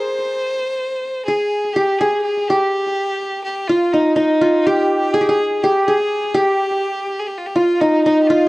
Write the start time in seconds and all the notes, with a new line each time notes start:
Already playing: G#4 A#4 C5
1.25 G#4
1.73 G4
1.99 G#4
2.22 G#4
2.47 G4
3.44 G4
3.68 F4
3.92 D#4
4.16 D#4
4.41 F4
4.66 G4
5.14 G#4
5.21 G4
5.29 G#4
5.63 G4
5.85 G#4
6.35 G4
7.19 G#4
7.27 G4
7.38 F4
7.46 G4
7.56 F4
7.81 D#4
8.04 D#4
8.23 G4
8.27 F4